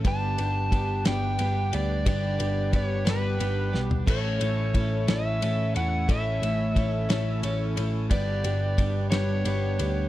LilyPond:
<<
  \new Staff \with { instrumentName = "Electric slide guitar" } { \time 6/8 \key g \lydian \tempo 4. = 60 a''4. g''4 d''8 | d''4 cis''8 b'4 r8 | cis''4. e''4 fis''8 | e''2 r4 |
d''4. cis''4. | }
  \new Staff \with { instrumentName = "Accordion" } { \time 6/8 \key g \lydian <b d' g' b'>2.~ | <b d' g' b'>2. | <cis' e' a' cis''>2.~ | <cis' e' a' cis''>2. |
<b d' g' b'>2. | }
  \new Staff \with { instrumentName = "Steel-string acoustic guitar" } { \time 6/8 \key g \lydian <g b d' g' b'>8 <d' g' b'>8 <b d' g' b'>8 <g b d' g' b'>8 <b d' g' b'>8 <d' g' b'>8 | <g b d' g' b'>8 <d' g' b'>8 <b d' g' b'>8 <g b d' g' b'>8 <b d' g' b'>8 <d' g' b'>8 | <a cis' e' cis''>8 <cis' e' cis''>8 <a cis' e' cis''>8 <a cis' e' cis''>8 <a cis' e' cis''>8 <cis' e' cis''>8 | <a cis' e' cis''>8 <cis' e' cis''>8 <a cis' e' cis''>8 <a cis' e' cis''>8 <a cis' e' cis''>8 <cis' e' cis''>8 |
<g b d' g' b'>8 <d' g' b'>8 <b d' g' b'>8 <g b d' g' b'>8 <b d' g' b'>8 <d' g' b'>8 | }
  \new Staff \with { instrumentName = "Clean electric guitar" } { \time 6/8 \key g \lydian <g, d g b d' g'>8 <g b d' g'>8 <g b d' g'>8 <g b d' g'>8 <g b d' g'>8 <g b d' g'>8 | <g, d g b d' g'>8 <g b d' g'>8 <g b d' g'>8 <g b d' g'>8 <g b d' g'>8 <g b d' g'>8 | <a, e a cis' a'>8 <a cis' a'>8 <e a cis' a'>8 <a cis' a'>8 <e a cis' a'>8 <a cis' a'>8 | <a, e a cis' a'>8 <a cis' a'>8 <e a cis' a'>8 <a cis' a'>8 <e a cis' a'>8 <a cis' a'>8 |
<g, d g b d' g'>8 <g b d' g'>8 <g b d' g'>8 <g b d' g'>8 <g b d' g'>8 <g b d' g'>8 | }
  \new Staff \with { instrumentName = "Picked electric bass" } { \clef bass \time 6/8 \key g \lydian g,,8 g,,8 g,,8 g,,8 g,,8 d,8 | g,,8 g,,8 g,,8 g,,8 g,,8 b,,8 | a,,8 a,,8 a,,8 a,,8 a,,8 e,8 | a,,8 a,,8 a,,8 a,,8 a,,8 a,,8 |
g,,8 g,,8 g,,8 g,,8 g,,8 d,8 | }
  \new DrumStaff \with { instrumentName = "Drums" } \drummode { \time 6/8 <bd cymr>8 cymr8 <bd cymr>8 <cymr sn>8 cymr8 cymr8 | <bd cymr>8 cymr8 <bd cymr>8 <cymr sn>8 cymr8 sn16 tomfh16 | <cymc bd cymr>8 cymr8 <bd cymr>8 <cymr sn>8 cymr8 cymr8 | <bd cymr>8 cymr8 <bd cymr>8 <cymr sn>8 cymr8 cymr8 |
<bd cymr>8 cymr8 <bd cymr>8 <cymr sn>8 cymr8 cymr8 | }
>>